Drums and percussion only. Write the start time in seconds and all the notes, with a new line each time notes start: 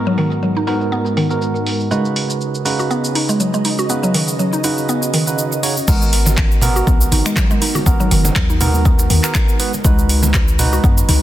0.07 shaker
0.18 open hi-hat, shaker
0.31 shaker
0.43 shaker
0.56 shaker
0.67 open hi-hat, shaker
0.81 shaker
0.92 shaker
1.06 shaker
1.17 open hi-hat, shaker
1.31 shaker
1.42 shaker
1.56 shaker
1.66 open hi-hat, shaker
1.80 shaker
1.91 shaker
2.05 shaker
2.16 open hi-hat, shaker
2.30 shaker
2.41 shaker
2.55 shaker
2.66 open hi-hat, shaker
2.79 shaker
2.91 shaker
3.04 shaker
3.15 open hi-hat, shaker
3.29 shaker
3.40 shaker
3.54 shaker
3.65 open hi-hat, shaker
3.79 shaker
3.90 shaker
4.03 shaker
4.14 open hi-hat, shaker
4.28 shaker
4.39 shaker
4.53 shaker
4.64 open hi-hat, shaker
4.78 shaker
4.89 shaker
5.03 shaker
5.14 open hi-hat, shaker
5.27 shaker
5.39 shaker
5.52 shaker
5.63 open hi-hat, shaker
5.77 shaker
5.88 kick, crash, shaker
6.02 shaker
6.13 open hi-hat, shaker
6.26 muted conga, high conga, shaker
6.38 finger snap, kick, clap, shaker
6.52 shaker
6.61 open hi-hat, muted conga, low conga, shaker
6.76 shaker
6.87 kick, shaker
7.01 muted conga, shaker
7.12 open hi-hat, high conga, shaker
7.26 finger snap, shaker
7.36 finger snap, kick, clap, muted conga, high conga, shaker
7.51 shaker
7.62 open hi-hat, shaker
7.75 muted conga, high conga, shaker
7.86 kick, shaker
8.00 high conga, shaker
8.11 open hi-hat, shaker
8.25 muted conga, high conga, shaker
8.36 finger snap, kick, clap, shaker
8.50 shaker
8.61 open hi-hat, low conga, shaker
8.74 shaker
8.85 kick, shaker
8.99 muted conga, shaker
9.10 open hi-hat, shaker
9.24 finger snap, clap, shaker
9.35 finger snap, kick, clap, muted conga, shaker
9.49 shaker
9.60 open hi-hat, shaker
9.74 muted conga, shaker
9.85 kick, shaker
9.99 shaker
10.09 open hi-hat, shaker
10.23 muted conga, high conga, shaker
10.34 finger snap, kick, clap, shaker
10.48 shaker
10.59 open hi-hat, muted conga, low conga, shaker
10.73 shaker
10.84 kick, shaker
10.98 muted conga, shaker
11.09 open hi-hat, high conga, shaker